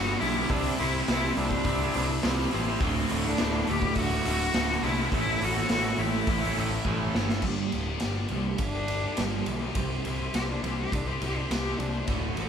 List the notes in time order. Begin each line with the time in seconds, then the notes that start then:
Already playing: G1 G2 D3 G3 B3 D4 F#4 G4
0.06 G3 B3 D4 G4
0.20 B1 G2 D3 G3 B3 D4 E4 G4, open hi-hat
0.35 G3 B3 D4 G4
0.47 C2 C3 G3 C4 D4 E4 G4 C5, kick, open hi-hat
0.63 C4 E4 G4 C5
0.78 C2 C3 G3 C4 E4 G4 C5, open hi-hat
0.93 C4 E4 G4 C5
1.07 C2 C3 G3 C4 E4 G4 C5, snare, open hi-hat
1.22 C4 E4 G4 C5
1.36 C2 C3 G3 C4 D4, muted overdriven electric guitar stroke, open hi-hat
1.50 C4 E4 G4 C5, muted distorted electric guitar stroke, kick
1.64 C2 C3 G3 C4, kick, open hi-hat
1.80 C4 E4 G4 C5
1.94 C2 C3 G3 C4 E4 G4 C5, open hi-hat
2.09 muted distorted electric guitar stroke
2.22 C2 C3 G3 C4 E4 G4 C5, snare, open hi-hat
2.38 C4 E4 G4 C5
2.51 A1 C3 G3 C4 E4 G4 C5, open hi-hat
2.66 C4 E4 G4 C5
2.80 D1 D2 A2 D3 A3 C4 F#4, kick, open hi-hat
2.95 D3 A3 F#4
3.09 D1 D2 A2 D3 A3 F#4, open hi-hat
3.24 D3 A3 D4 F#4
3.37 D1 D2 A2 D3 A3 F#4, snare, open hi-hat
3.53 D3 A3 F#4
3.67 D1 D2 A2 D3 G4, muted overdriven electric guitar stroke, open hi-hat
3.82 D3 A3 F#4, muted distorted electric guitar stroke, kick
3.95 D1 D2 A2, kick, open hi-hat
3.99 D3 F#4
4.11 D3 A3 F#4
4.25 D1 D2 A2 D3 A3 F#4, open hi-hat
4.39 muted distorted electric guitar stroke
4.53 D1 D2 A2 D3 A3 F#4, snare, open hi-hat
4.68 D3 A3 F#4
4.82 C2 D2 A2 D3 A3 E4 F#4, open hi-hat
4.97 D3 A3 F#4
5.11 A1 A2 E3 A3 C#4 E4 A4, kick, open hi-hat
5.16 E4
5.28 A3 C#4 E4 A4
5.41 A1 A2 E3 A3 C#4 E4 F#4 A4, open hi-hat
5.55 A3 C#4 E4 A4, snare
5.69 A1 A2 E3 A3 C#4 E4 F#4 A4, snare, open hi-hat
5.84 A3 C#4 E4 A4
5.98 A1 A2 E3 A3 E4, muted overdriven electric guitar stroke, open hi-hat
6.14 A3 C#4 E4 A4, muted distorted electric guitar stroke
6.27 A1 A2 E3 A3, kick, open hi-hat
6.41 A3 C#4 E4 A4
6.55 A1 A2 E3 A3 C#4, open hi-hat
6.60 E4 A4
6.71 muted distorted electric guitar stroke
6.85 A1 A2 E3 A3 C#4 E4 A4, kick
7.00 A3 C#4 E4 A4
7.14 G1 A2 E3 A3 C#4 E4 A4, snare
7.29 A3 C#4 E4 A4, snare
7.42 G1 G2 D3 G3 B3 D4 G4, kick, crash
7.72 D1 G2 D3, ride
7.87 G3 B3 D4 G4
8.00 G1 G2 D3 G3 B3, snare, ride
8.04 D4 G4
8.28 C2 G2 D3 G3 B3, ride
8.33 D4 G4
8.46 A3, muted overdriven electric guitar stroke
8.58 G1, kick, ride
8.62 D4
8.75 G3 B3 D4 G4
8.88 G2 D3 G3 B3 D4 G4, ride
9.04 G3 B3 D4 G4
9.17 G1 G2 D3 G3 B3 D4, snare, ride
9.21 G4
9.34 F3
9.46 B1 G2 D3 E3, muted overdriven electric guitar stroke, ride
9.61 G3 B3 D4 G4
9.75 C2 C3 G3 C4 E4 G4 C5, kick, ride
10.05 C2 C3 G3, ride
10.19 C4 E4 G4 C5
10.34 C2 C3 G3 C4 E4 G4 C5, snare, ride
10.51 D4
10.62 C2 C3 G3 C4 E4 G4 C5, ride
10.78 G4, muted overdriven electric guitar stroke
10.92 C2 C3 G3 D4, kick, ride
11.07 C4 E4 G4 C5
11.21 C2 C3 G3 C4 E4 G4 C5, ride
11.37 C4 D4 E4 G4 C5
11.50 C2 C3 G3 C4 E4 G4 C5, snare, ride
11.78 C2 C3 G3 D4, muted overdriven electric guitar stroke, ride
11.93 C4 E4 G4 C5
12.07 D1 D2 A2 D3 A3 F#4, kick, ride
12.36 A1 A2 D3 A3 F#4, ride